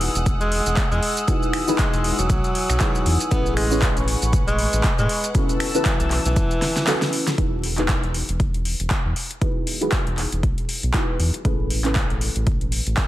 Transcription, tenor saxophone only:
0.41 G#3
0.92 G#3
1.79 G#3
2.19 F#3
3.31 B3
3.57 G#3
4.48 G#3
4.98 G#3
5.86 E3
6.26 E3

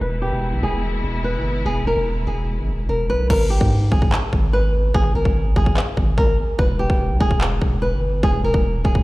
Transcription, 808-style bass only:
0.01 E1
0.32 E1
0.53 B1
0.63 E1
1.04 E1
1.35 G1
1.66 E1
1.86 E1
1.97 E1
2.17 D#1
2.27 E1
2.58 G#1
2.68 E1
2.89 E1
3.10 B1
3.30 G#1
3.61 G#2
3.92 G#1
4.33 G#1
4.94 G#1
5.15 G#1
5.25 G#1
5.56 G#1
5.97 G#1
6.18 G#1
6.59 E1
6.90 E1
7.10 B1
7.21 E1
7.62 E1
7.92 G1
8.23 E1
8.44 E1
8.54 E1
8.74 D#1
8.85 E1

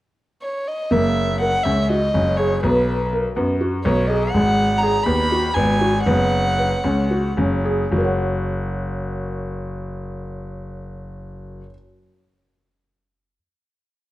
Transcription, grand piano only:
0.91 F#1
1.65 C#2
2.14 F#1
2.63 B1
3.36 F#2
3.85 B1
4.34 G#1
5.06 D#2
5.56 G#1
6.06 F#1
6.84 C#2
7.37 F#1
7.92 F#1

